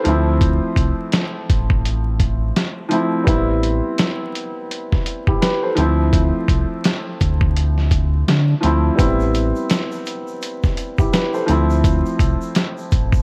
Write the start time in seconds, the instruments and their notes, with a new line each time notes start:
Already playing: grand piano A4 C5
0.04 sub bass D2, grand piano F3 A3 C4, closed hi-hat
0.08 grand piano E4
0.41 kick, closed hi-hat
0.77 sub bass C2, kick, closed hi-hat
1.12 snare, closed hi-hat
1.50 sub bass A1, kick, closed hi-hat
1.70 kick
1.85 closed hi-hat
2.20 kick, closed hi-hat
2.56 snare, closed hi-hat
2.89 grand piano F3 A3 C4, closed hi-hat
2.93 grand piano E4
3.24 sub bass A1, grand piano G3 B3 C4, kick
3.28 grand piano E4, closed hi-hat
3.63 closed hi-hat
3.98 snare, closed hi-hat
4.36 closed hi-hat
4.71 closed hi-hat
4.92 kick, snare
5.06 closed hi-hat
5.27 sub bass G1, grand piano E4 G4, kick
5.42 grand piano G4 B4, snare, closed hi-hat
5.63 grand piano A4 C5
5.75 sub bass D2, grand piano F3 A3 C4, closed hi-hat
5.80 grand piano E4
6.13 kick, closed hi-hat
6.48 sub bass C2, kick, closed hi-hat
6.84 snare, closed hi-hat
7.21 sub bass D2, kick, closed hi-hat
7.41 kick
7.57 closed hi-hat
7.78 snare
7.91 kick, closed hi-hat
8.28 sub bass D3, snare, closed hi-hat
8.60 sub bass D2, grand piano F3 A3 C4, closed hi-hat
8.65 grand piano E4
8.95 sub bass A1, grand piano G3 B3 C4, kick, shaker
8.99 grand piano E4, closed hi-hat
9.20 shaker
9.34 closed hi-hat, shaker
9.56 shaker
9.70 snare, closed hi-hat, shaker
9.92 shaker
10.06 closed hi-hat, shaker
10.28 shaker
10.42 closed hi-hat, shaker
10.63 kick, snare, shaker
10.77 closed hi-hat, shaker
10.98 sub bass G1, grand piano E4 G4, kick, shaker
11.13 grand piano G4 B4, snare, closed hi-hat, shaker
11.34 grand piano A4 C5, shaker
11.46 sub bass D2, grand piano F3 A3 C4, closed hi-hat, shaker
11.51 grand piano E4
11.70 shaker
11.84 kick, closed hi-hat, shaker
12.06 shaker
12.19 sub bass C2, kick, closed hi-hat, shaker
12.42 shaker
12.55 snare, closed hi-hat, shaker
12.78 shaker
12.91 sub bass A1, kick, closed hi-hat, shaker
13.13 kick, shaker